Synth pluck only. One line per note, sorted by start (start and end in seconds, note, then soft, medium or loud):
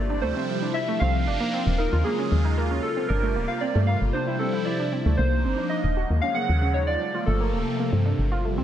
0.10 0.22 D4 medium
0.23 0.33 A3 loud
0.36 0.46 C4 medium
0.62 0.68 D4 medium
0.75 0.85 E4 medium
0.88 0.99 A3 loud
1.01 1.14 C4 medium
1.27 1.40 D4 medium
1.40 1.51 A#3 loud
1.53 1.64 C4 medium
1.79 1.86 D#4 medium
1.93 2.03 F4 medium
2.06 2.16 A#3 loud
2.19 2.31 C#4 medium
2.45 2.57 D#4 medium
2.58 2.68 A#3 loud
2.71 2.81 C#4 medium
2.97 3.03 C4 medium
3.10 3.20 D4 medium
3.23 3.33 A3 loud
3.36 3.48 A#3 medium
3.62 3.74 C4 medium
3.75 3.85 A3 loud
3.88 3.98 A#3 medium
4.14 4.20 D4 medium
4.27 4.38 E4 medium
4.40 4.51 C4 medium
4.53 4.60 E4 medium
4.66 4.77 E4 medium
4.79 4.90 D4 medium
4.93 4.99 C4 medium
5.06 5.18 A3 loud
5.19 5.25 A#3 medium
5.45 5.57 C4 medium
5.58 5.68 D4 medium
5.71 5.77 D#4 medium
5.97 6.07 F#4 loud
6.10 6.16 A#3 medium
6.23 6.33 C#4 loud
6.36 6.42 A#3 medium
6.62 6.74 C#4 medium
6.75 6.85 D#4 medium
6.88 6.94 F4 medium
7.14 7.25 F4 loud
7.27 7.34 A3 medium
7.41 7.51 A#3 loud
7.54 7.60 A3 medium
7.80 7.92 A#3 medium
7.93 8.03 C4 medium
8.06 8.12 D4 medium
8.32 8.42 F4 loud
8.45 8.51 A3 medium
8.58 8.64 C4 loud